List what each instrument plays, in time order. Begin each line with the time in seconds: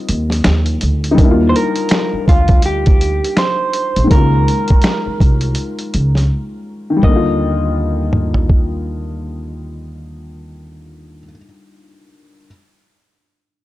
Already playing: upright piano G3 A#3 C4 D#4 F4, clean electric guitar D#5
0.09 upright bass D#2, closed hi-hat
0.30 snare, closed hi-hat
0.44 upright bass D#2, finger snap, snare, closed hi-hat
0.66 closed hi-hat
0.81 upright bass D2, closed hi-hat
1.04 closed hi-hat
1.11 upright piano G3 D#4
1.18 upright bass D#2, upright piano A#3 D4, kick, closed hi-hat
1.24 upright piano E4
1.31 upright piano F4
1.49 clean electric guitar C5
1.56 clean electric guitar A#4, closed hi-hat
1.76 closed hi-hat
1.89 finger snap, snare, closed hi-hat
2.13 muted upright bass stroke
2.28 upright bass D2, clean electric guitar F4, kick, closed hi-hat
2.48 kick, closed hi-hat
2.62 clean electric guitar G4, closed hi-hat
2.86 kick, closed hi-hat
3.01 closed hi-hat
3.24 closed hi-hat
3.37 clean electric guitar C5, finger snap, snare, closed hi-hat
3.73 closed hi-hat
3.96 upright bass A#1, closed hi-hat
4.04 upright piano D#3 G#3
4.10 upright bass C#2, upright piano A#3 C#4, clean electric guitar A#4, kick, closed hi-hat
4.17 upright piano F4
4.48 closed hi-hat
4.68 kick, closed hi-hat
4.82 finger snap, snare, closed hi-hat
5.06 muted upright bass stroke
5.20 upright bass C2, kick, closed hi-hat
5.41 closed hi-hat
5.55 closed hi-hat
5.79 closed hi-hat
5.94 upright bass C#2, closed hi-hat
6.15 snare, closed hi-hat
6.90 upright piano D#3
6.97 upright piano G3
7.03 upright bass D#2, upright piano A#3, clean electric guitar D#5, kick
7.09 upright piano D3
7.16 upright piano F4
8.13 mid tom
8.34 floor tom
8.50 kick